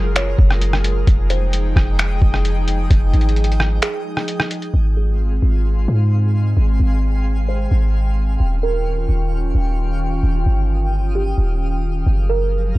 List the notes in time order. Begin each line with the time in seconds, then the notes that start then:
Already playing: F#1 F#3 G#3 F4 G#4 A#4
0.16 C#5, finger snap, closed hi-hat
0.39 F#1, kick
0.51 cross-stick
0.61 closed hi-hat
0.73 cross-stick
0.84 closed hi-hat
1.07 F1 F3 D#4 G#4 D#5 G5, kick, closed hi-hat
1.30 C5, closed hi-hat
1.53 closed hi-hat
1.76 F1, kick, cross-stick
1.99 finger snap, closed hi-hat
2.22 F1, kick
2.34 cross-stick
2.45 closed hi-hat
2.68 closed hi-hat
2.91 F1, kick, closed hi-hat
3.13 G#1, closed hi-hat
3.21 closed hi-hat
3.29 closed hi-hat
3.36 closed hi-hat
3.44 closed hi-hat
3.52 closed hi-hat
3.60 cross-stick
3.82 G#4, finger snap, closed hi-hat
4.17 cross-stick
4.28 closed hi-hat
4.40 cross-stick
4.51 closed hi-hat
4.62 closed hi-hat
4.73 G#1 G#3 C4 F4 G#4 F5 C6
4.97 G#4
5.42 G#1
5.88 G#2
6.57 G#1 G5
6.80 G#1
7.48 C5
7.71 G#1
8.40 D#1 D#3 C#4 F4 G4 C#6
8.63 A#4
9.09 D#1
9.55 D#1
10.23 D#1 D#6
10.46 G1
11.15 G4
11.38 D#1
12.07 F#1 F3 F#3 G#4 A#4 A#5
12.29 A#4
12.75 F#1